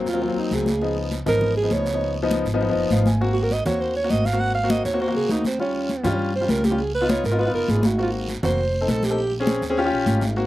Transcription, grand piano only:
0.14 F#3 A#3 C4
0.22 F#3 A#3 C4
0.29 F#3 A#3 C4
0.82 F3 B3 D#4
1.26 F3 B3 D#4
1.63 F3 B3 D#4
1.94 F3 B3 D#4
2.23 F3 B3 D#4
2.54 F3 B3 D#4
2.61 F3 B3 D#4
2.69 F3 B3 D#4
2.78 D#5
2.92 F5
3.07 G#5
3.21 A#3 C4 F#4
3.66 A#3 C4 F#4
4.04 A#3 C4 F#4
4.33 A#3 C4 F#4
4.63 A#3 C4 F#4
4.93 A#3 C4 F#4
5.01 A#3 C4 F#4
5.08 A#3 C4 F#4
5.59 G3 C#4 F4
6.03 G3 C#4 F4
6.40 G3 C#4 F4
6.71 G3 C#4 F4
7.01 B3 D#4 F4
7.31 B3 D#4 F4
7.38 B3 D#4 F4
7.46 B3 D#4 F4
7.98 A#3 C4 F#4
8.43 A#3 C4 F#4
8.81 C4 D#4 A4
9.10 C4 D#4 A4
9.40 C4 C#4 G#4
9.70 C4 C#4 G#4
9.78 C#4 F4 G4
9.85 C#4 F4 G4
10.36 A#3 C4 F#4

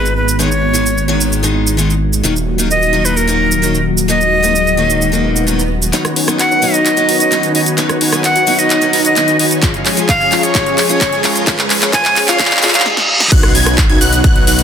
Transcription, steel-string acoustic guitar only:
0.39 D#3 G#3 B3 D#4
0.73 D#3 G#3 B3 D#4
1.08 D#3 G#3 B3 D#4
1.43 D#3 G#3 B3 D#4
1.77 D#3 G#3 B3 D#4
2.23 D#3 F#3 A#3 D#4
2.58 D#3 F#3 A#3 D#4
2.93 D#3 F#3 A#3 D#4
3.27 D#3 F#3 A#3 D#4
3.62 D#3 F#3 A#3 D#4
4.08 D#3 F#3 A#3 D#4
4.43 D#3 F#3 A#3 D#4
4.77 D#3 F#3 A#3 D#4
5.12 D#3 F#3 A#3 D#4
5.47 D#3 F#3 A#3 D#4
5.93 F#3 B3 C#4 D#4
6.27 F#3 B3 C#4 D#4
6.62 F#3 B3 C#4 D#4
6.97 F#3 B3 C#4 D#4
7.31 F#3 B3 C#4 D#4
7.77 F#3 B3 C#4 D#4
8.12 F#3 B3 C#4 D#4
8.47 F#3 B3 C#4 D#4
8.81 F#3 B3 C#4 D#4
9.16 F#3 B3 C#4 D#4
9.62 F3 G#3 C#4 F4
9.97 F3 G#3 C#4 F4
10.31 F3 G#3 C#4 F4
10.54 F3 G#3 C#4 F4
10.89 F3 G#3 C#4 F4
11.23 F3 G#3 C#4 F4
11.47 F3 G#3 C#4 F4
11.81 F3 G#3 C#4 F4
11.93 F3 G#3 C#4 F4
12.27 F3 G#3 C#4 F4
12.39 F3 G#3 C#4
12.62 F3 G#3 C#4 F4

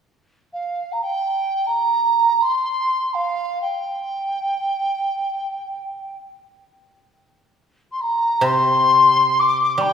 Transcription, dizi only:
0.53 F5
0.92 A#5
1.02 G5
1.66 A#5
2.41 C6
3.14 F5
3.61 G5
7.91 C6
8.01 A#5
8.44 C6
9.39 D6
9.81 G5

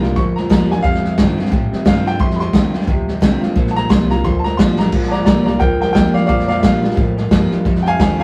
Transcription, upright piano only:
Already playing: A#5
0.16 C#6
0.36 A#5
0.51 A#5
0.72 G#5
0.83 F5
1.87 F5
2.07 G5
2.20 C6
2.36 B5
2.40 C6
3.71 A5
3.76 A#5
3.90 C6
4.11 A#5
4.25 C6
4.39 A5
4.44 A#5
4.57 C6
4.79 A#5
5.08 D5 A5
5.12 A#5
5.25 D5 A#5
5.44 D5 A#5
5.59 A#4 G5
5.81 A#4 G5
5.93 A#4 G5
6.14 D5 F5
6.27 D5 F5
6.48 D5 F5
6.59 E5
6.64 F5
7.83 G5
7.87 F5 G#5
8.00 F5 G#5
8.20 F5

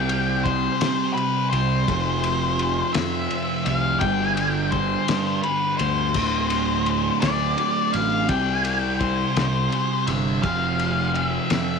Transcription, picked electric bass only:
Already playing: C2
0.82 C3
1.53 C2
1.89 F1
2.96 F2
3.67 C2
4.01 G1
5.09 G2
5.81 D2
6.15 D1
7.23 D2
7.95 A1
8.29 C2
9.36 C2
10.08 G1
10.44 F1
11.51 F2

